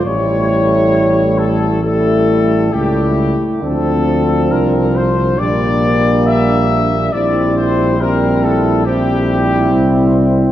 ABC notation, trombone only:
X:1
M:4/4
L:1/8
Q:1/4=69
K:Aphr
V:1 name="Trombone" clef=bass
G,4 G,2 G, z | F,4 G,4 | G,2 G,2 G,4 |]